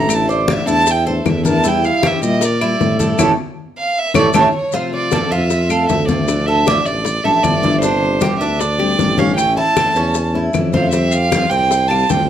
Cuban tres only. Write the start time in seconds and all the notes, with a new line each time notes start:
Already playing: A4
0.29 D5
0.67 E4
1.07 A4
1.45 A#4
1.65 E4
2.04 G4
2.41 A#4
2.62 E4
2.99 A4
3.19 E4 A4 C#5
4.15 E4 A4 C#5
4.35 E4 A4 C#5
4.74 F4
5.12 A4
5.32 F4
5.71 A4
6.48 A4
6.68 D5
7.25 A4
7.63 D5
7.83 D4
8.21 G4
8.41 D4
8.79 G4
9.19 C#4
9.57 E4
9.77 A4
9.96 C#4
10.35 E4
10.74 C5
10.93 C4
11.32 F4
11.51 C4
11.90 F4